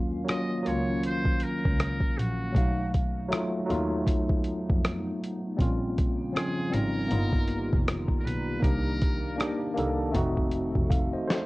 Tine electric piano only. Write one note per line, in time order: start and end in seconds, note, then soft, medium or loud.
0.00 0.16 F#3 medium
0.00 0.17 A#3 medium
0.00 0.18 C#4 medium
0.00 0.18 F4 medium
0.24 0.59 F#3 medium
0.24 0.59 A#3 medium
0.24 0.60 C#4 medium
0.29 0.61 F4 medium
0.63 1.94 F#3 medium
0.63 1.95 A#3 medium
0.63 1.96 C#4 medium
0.68 1.97 F4 medium
2.53 3.20 F#3 medium
2.53 3.21 A3 medium
2.53 3.22 D#4 medium
2.57 3.22 F5 medium
3.29 3.63 F#3 medium
3.29 3.64 A3 medium
3.29 3.64 D#4 medium
3.34 3.65 F4 medium
3.65 4.97 F#3 medium
3.65 4.98 A3 medium
3.65 4.99 D#4 medium
3.71 5.00 F4 loud
5.57 6.24 G3 medium
5.57 6.24 C4 medium
5.57 6.25 C#4 medium
5.62 6.26 F4 loud
6.33 6.67 F3 medium
6.33 6.67 C4 medium
6.33 6.68 C#4 medium
6.37 6.69 F4 medium
6.70 7.09 G3 medium
6.70 7.10 C4 medium
6.70 7.11 C#4 medium
6.75 7.10 D#4 medium
7.08 8.40 A#3 medium
7.08 8.40 B3 medium
7.08 8.41 D#4 medium
7.13 8.42 F4 medium
8.60 9.27 A#3 medium
8.60 9.28 D4 medium
8.60 9.29 D#4 medium
8.64 9.30 G4 medium
9.36 9.70 A#3 medium
9.36 9.71 D4 medium
9.36 9.72 D#4 medium
9.41 9.73 G4 medium
9.74 10.13 A#3 medium
9.74 10.14 D4 medium
9.74 10.14 D#4 medium
9.79 10.16 A4 loud
10.11 11.43 A3 loud
10.11 11.44 C4 loud
10.11 11.45 D#4 medium
10.16 10.91 F#4 loud
10.90 11.12 F5 medium
11.13 11.26 C5 medium
11.13 11.28 D#5 medium
11.28 11.46 A4 medium
11.28 11.46 C5 medium